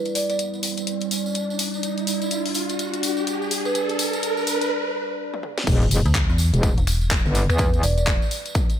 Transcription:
0.00 5.63 G3 medium
0.00 1.79 E4 medium
0.00 5.63 D5 medium
0.00 riser medium
0.05 closed hi-hat soft
0.05 tambourine soft
0.15 0.24 D5 medium
0.15 open hi-hat loud
0.15 tambourine medium
0.30 0.36 D5 medium
0.30 closed hi-hat soft
0.30 tambourine soft
0.39 closed hi-hat medium
0.39 tambourine medium
0.54 tambourine soft
0.63 open hi-hat loud
0.63 tambourine medium
0.77 closed hi-hat medium
0.77 tambourine soft
0.87 closed hi-hat medium
0.87 tambourine medium
1.01 closed hi-hat medium
1.01 tambourine soft
1.11 open hi-hat loud
1.11 tambourine loud
1.26 tambourine soft
1.35 closed hi-hat medium
1.35 tambourine medium
1.50 tambourine soft
1.59 open hi-hat loud
1.59 tambourine loud
1.74 tambourine soft
1.83 5.63 D4 medium
1.83 closed hi-hat medium
1.83 tambourine medium
1.98 closed hi-hat soft
1.98 tambourine soft
2.07 open hi-hat loud
2.07 tambourine loud
2.22 closed hi-hat soft
2.22 tambourine soft
2.31 closed hi-hat medium
2.31 tambourine medium
2.46 open hi-hat medium
2.46 tambourine soft
2.54 open hi-hat loud
2.54 tambourine medium
2.69 closed hi-hat medium
2.69 tambourine soft
2.79 closed hi-hat medium
2.79 tambourine medium
2.94 closed hi-hat medium
2.94 tambourine soft
3.03 open hi-hat loud
3.03 tambourine medium
3.17 tambourine soft
3.27 closed hi-hat medium
3.27 tambourine medium
3.42 tambourine soft
3.51 open hi-hat loud
3.51 tambourine medium
3.65 3.72 B4 medium
3.65 tambourine soft
3.75 3.84 B4 medium
3.75 closed hi-hat medium
3.75 tambourine medium
3.89 closed hi-hat soft
3.89 tambourine soft
3.99 open hi-hat loud
3.99 tambourine medium
4.13 closed hi-hat soft
4.13 tambourine soft
4.23 closed hi-hat medium
4.23 tambourine medium
4.37 tambourine soft
4.47 open hi-hat loud
4.47 tambourine loud
4.61 closed hi-hat soft
4.61 tambourine soft
5.34 high tom medium
5.43 mid tom medium
5.58 snare medium
5.67 5.90 E1 loud
5.67 8.80 G3 medium
5.67 8.80 E4 medium
5.67 8.80 D5 medium
5.67 kick loud
5.67 closed hi-hat medium
5.67 crash loud
5.67 tambourine medium
5.67 sub drop medium
5.82 closed hi-hat soft
5.82 tambourine soft
5.91 6.03 E1 loud
5.91 open hi-hat loud
5.91 tambourine loud
6.06 6.27 D2 medium
6.06 closed hi-hat soft
6.06 tambourine soft
6.15 kick loud
6.15 clap loud
6.15 closed hi-hat medium
6.15 tambourine medium
6.29 6.51 E2 loud
6.29 tambourine soft
6.38 open hi-hat loud
6.38 tambourine medium
6.54 6.75 E1 loud
6.54 closed hi-hat medium
6.54 tambourine soft
6.63 kick loud
6.63 closed hi-hat medium
6.63 tambourine medium
6.78 7.23 E1 loud
6.78 closed hi-hat medium
6.78 tambourine soft
6.87 finger snap medium
6.87 open hi-hat loud
6.87 tambourine medium
7.01 tambourine soft
7.11 kick loud
7.11 clap loud
7.11 closed hi-hat medium
7.11 tambourine medium
7.26 7.47 G1 loud
7.26 tambourine soft
7.35 open hi-hat loud
7.35 tambourine medium
7.49 7.82 E2 loud
7.49 7.56 B4 medium
7.49 finger snap medium
7.49 tambourine soft
7.58 7.68 B4 medium
7.58 kick loud
7.58 closed hi-hat medium
7.58 tambourine medium
7.73 closed hi-hat soft
7.73 tambourine soft
7.83 8.19 E1 loud
7.83 7.92 D5 medium
7.83 open hi-hat loud
7.83 tambourine loud
7.97 8.04 D5 medium
7.97 closed hi-hat soft
7.97 tambourine soft
8.07 kick loud
8.07 clap loud
8.07 closed hi-hat medium
8.07 tambourine medium
8.22 tambourine soft
8.31 open hi-hat loud
8.31 tambourine medium
8.45 closed hi-hat medium
8.45 tambourine soft
8.55 kick loud
8.55 closed hi-hat medium
8.55 tambourine medium
8.70 closed hi-hat medium
8.70 tambourine soft

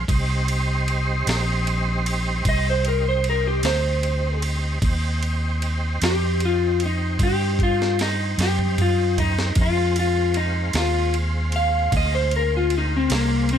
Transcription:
0.08 1.23 C2 medium
0.08 4.79 G3 medium
0.08 4.79 C4 medium
0.08 4.79 D#4 medium
0.08 4.79 C5 medium
0.08 kick loud
0.08 ride medium
0.48 ride medium
0.88 ride medium
1.27 2.42 A#1 loud
1.27 snare loud
1.27 ride medium
1.67 ride medium
2.06 ride medium
2.45 3.60 C2 medium
2.45 2.66 D#5 loud
2.45 kick medium
2.45 ride medium
2.70 2.87 C5 medium
2.85 3.06 A#4 medium
2.85 ride medium
3.08 3.26 C5 medium
3.24 ride medium
3.30 3.46 A#4 medium
3.47 3.65 G4 medium
3.63 4.78 D2 medium
3.63 4.41 C5 medium
3.63 snare loud
3.63 ride medium
4.03 ride medium
4.42 ride medium
4.82 5.97 D#2 medium
4.82 9.53 C4 medium
4.82 9.53 D#4 medium
4.82 9.53 G4 medium
4.82 9.53 C5 medium
4.82 kick loud
4.82 ride medium
5.23 ride medium
5.62 ride medium
6.02 7.16 F2 medium
6.02 6.41 G4 loud
6.02 snare loud
6.02 ride medium
6.40 ride medium
6.45 6.81 F4 medium
6.80 ride medium
6.86 7.21 D#4 medium
7.19 8.34 G2 medium
7.19 kick medium
7.19 high tom medium
7.19 ride medium
7.23 7.59 G4 loud
7.59 kick medium
7.59 ride medium
7.63 7.99 F4 medium
7.82 snare medium
7.99 8.38 D#4 medium
7.99 snare medium
7.99 ride medium
8.38 9.52 F#2 medium
8.38 snare medium
8.38 ride medium
8.43 8.78 G4 loud
8.59 mid tom medium
8.78 9.18 F4 medium
8.78 mid tom medium
8.78 ride medium
9.18 9.56 D#4 medium
9.18 floor tom loud
9.18 ride medium
9.39 snare medium
9.55 10.70 F2 medium
9.55 13.58 G#3 medium
9.55 13.58 C4 medium
9.55 13.58 F4 medium
9.55 13.58 C5 medium
9.55 kick loud
9.55 ride medium
9.61 9.97 F4 medium
9.96 10.36 F4 medium
9.96 ride medium
10.34 10.74 D#4 medium
10.34 ride medium
10.73 11.89 D#2 medium
10.73 snare loud
10.73 ride medium
10.78 11.14 F4 medium
11.14 ride medium
11.52 11.93 F5 loud
11.52 ride medium
11.92 13.07 D2 medium
11.92 kick medium
11.92 ride medium
11.97 12.14 D#5 medium
12.15 12.33 C5 medium
12.31 ride medium
12.36 12.53 A#4 medium
12.57 12.73 F4 medium
12.70 ride medium
12.78 12.94 D#4 medium
12.97 13.13 C4 loud
13.10 13.58 C2 medium
13.10 snare loud
13.10 ride medium
13.14 13.51 A#3 medium
13.49 13.58 C4 medium
13.49 ride medium

